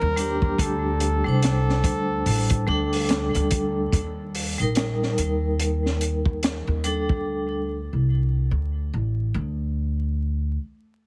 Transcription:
Already playing: G3 D#4 A#4
0.01 D#2
0.16 G3 D4, closed hi-hat
0.21 G4
0.42 kick
0.58 D2 A4, kick, closed hi-hat
1.00 closed hi-hat
1.24 C2 G3 D4
1.28 C5
1.43 snare, closed hi-hat
1.70 snare
1.84 D2, kick, closed hi-hat
2.26 A1, open hi-hat
2.50 kick, closed hi-hat
2.66 D2 G3 D4
2.71 A4
2.93 open hi-hat
3.09 snare, closed hi-hat
3.35 D2, closed hi-hat
3.51 kick, closed hi-hat
3.92 D#2, kick, closed hi-hat
4.35 open hi-hat
4.58 A#1 G3 D#4, closed hi-hat
4.63 A#4
4.75 snare, closed hi-hat
5.03 snare
5.18 D#2, closed hi-hat
5.59 closed hi-hat
5.86 snare
6.01 closed hi-hat
6.26 kick
6.43 snare, closed hi-hat
6.67 D#2
6.84 G3 D4 A4, closed hi-hat
7.09 kick
7.26 D2
7.93 C2
8.51 D2
8.93 A1
9.34 D2

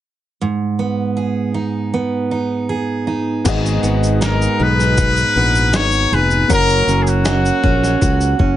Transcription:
0.41 G#2
0.79 B3
1.17 G#4
1.54 D#4
1.94 B3
2.31 D#4
2.69 G#4
3.07 D#4
3.44 G#1 G#2 B3 F#4 G#4, kick, crash, shaker
3.49 D#5
3.66 shaker
3.83 G#1 B3, shaker
4.03 shaker
4.21 D#4 A#4, snare, shaker
4.42 shaker
4.60 B1 B3 B4
4.80 snare, shaker
4.97 D#4, kick, shaker
5.17 shaker
5.36 A#1 B3
5.55 shaker
5.73 G#1 D#4 C#5, snare, shaker
5.92 shaker
6.12 F1 G#4 B4
6.31 shaker
6.48 F#1 F#3 A#3 C#4 F#4 A#4 C#5, kick, shaker
6.53 A#4
6.70 shaker
6.87 F#1 C#4, shaker
7.02 G#4
7.07 F#4, shaker
7.25 F#4, snare, shaker
7.45 shaker
7.63 A#1 C#4, kick
7.84 snare, shaker
8.01 C#2 F#4, kick, shaker
8.21 shaker
8.39 F#1 C#4, kick

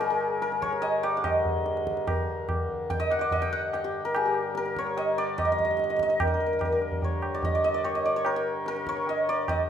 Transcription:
Already playing: G2 D3 C#5 D#5
0.00 G#4, tabla na
0.10 A#4
0.21 tabla na
0.42 A#4, tabla te
0.52 tabla te
0.62 C#5, tabla ke
0.73 tabla te
0.82 D#5, tabla tin
1.03 D5, tabla na
1.17 F#5
1.24 D#5, tabla na, tabla ge
1.45 tabla ge
1.66 tabla te
1.77 tabla te
1.87 tabla ke
1.97 tabla te
2.07 A#4, tabla na, tabla ge
2.49 tabla na, tabla ge
2.69 tabla ge
2.90 G5, tabla tin, tabla ge
3.00 D#5
3.11 F#5, tabla na
3.19 D5 D#5
3.31 D#5, tabla tin, tabla ge
3.42 G5
3.53 F#5
3.73 G5, tabla na
3.84 G4
4.05 A#4
4.15 G#4, tabla na
4.26 G4
4.35 tabla na
4.55 A#4, tabla te
4.66 tabla te
4.76 C#5, tabla ke
4.87 tabla te
4.97 D#5, tabla tin
5.18 D5, tabla na
5.38 D#5, tabla na, tabla ge
5.45 D#5
5.52 D#5
5.59 D#5, tabla ge
5.65 D#5
5.71 D#5
5.77 D#5, tabla te
5.84 D#5
5.89 D#5, tabla te
5.96 D#5, tabla ke
6.03 D#5
6.09 D#5, tabla te
6.20 G2 D3 A#4, tabla na, tabla ge
6.28 A#4
6.34 A#4
6.40 A#4
6.46 A#4
6.53 A#4
6.59 A#4, tabla na, tabla ge
6.65 A#4
6.72 A#4
6.82 tabla te
6.92 tabla ge
7.02 C#5, tabla tin, tabla ge
7.22 tabla na
7.34 D5
7.43 D#5, tabla tin, tabla ge
7.55 D5
7.64 D#5
7.74 D5
7.84 C#5, tabla na
7.95 D#5
8.05 D5
8.16 C#5
8.25 A#4, tabla na
8.36 G5
8.66 A#4, tabla te
8.76 tabla te
8.87 C#5, tabla ke
8.97 tabla te
9.07 D#5, tabla tin
9.29 D5
9.48 D#5, tabla na, tabla ge

